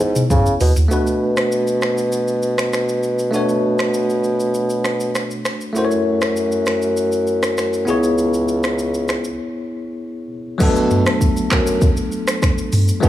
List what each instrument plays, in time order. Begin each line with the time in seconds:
Already playing: tine electric piano B3 E4 G#4 C#5
0.00 bassoon G#2, shaker
0.16 mid tom, shaker
0.30 bassoon C#3, kick, mid tom, shaker
0.46 shaker
0.60 bassoon B2, floor tom, open hi-hat, shaker
0.76 floor tom, shaker
0.88 bassoon B2, tine electric piano A3 D4 F#4, shaker
0.93 tine electric piano B4
1.07 shaker
1.37 finger snap, cross-stick, shaker
1.52 shaker
1.67 shaker
1.81 finger snap, cross-stick, shaker
1.98 shaker
2.12 shaker
2.28 shaker
2.43 shaker
2.58 finger snap, cross-stick, shaker
2.73 finger snap, cross-stick, shaker
2.89 shaker
3.03 shaker
3.19 shaker
3.31 bassoon B2, tine electric piano A3 D4 F#4, shaker
3.36 tine electric piano C#5
3.49 shaker
3.79 finger snap, cross-stick, shaker
3.94 shaker
4.10 shaker
4.24 shaker
4.40 shaker
4.54 shaker
4.70 shaker
4.84 finger snap, cross-stick, shaker
5.00 shaker
5.15 finger snap, cross-stick, shaker
5.31 shaker
5.45 finger snap, cross-stick, shaker
5.61 shaker
5.73 bassoon F#2, tine electric piano A3 E4 F#4, shaker
5.78 tine electric piano C5
5.85 tine electric piano C#5
5.91 shaker
6.21 finger snap, cross-stick, shaker
6.37 shaker
6.52 shaker
6.66 finger snap, cross-stick, shaker
6.82 shaker
6.97 shaker
7.12 shaker
7.27 shaker
7.43 finger snap, cross-stick, shaker
7.58 finger snap, cross-stick, shaker
7.73 shaker
7.85 bassoon C#2, tine electric piano B3 E4 G#4, shaker
7.90 tine electric piano C#5
8.03 shaker
8.18 shaker
8.34 shaker
8.48 shaker
8.63 finger snap, cross-stick, shaker
8.79 shaker
8.94 shaker
9.08 finger snap, cross-stick, shaker
9.24 shaker
10.58 bassoon B2, tine electric piano F#3 A3 B3 D4, kick, crash, shaker
10.63 tine electric piano A4
10.76 shaker
10.91 mid tom, shaker
11.06 finger snap, cross-stick, shaker
11.21 kick, shaker
11.37 shaker
11.51 bassoon F#2, finger snap, kick, cross-stick, clap, shaker
11.67 shaker
11.81 kick, shaker
11.97 shaker
12.12 shaker
12.28 finger snap, cross-stick, shaker
12.42 finger snap, kick, cross-stick, shaker
12.58 shaker
12.73 mid tom, open hi-hat, shaker
12.88 shaker
13.00 bassoon B2, tine electric piano F#3 A3 B3 D4, kick, shaker
13.05 tine electric piano G#4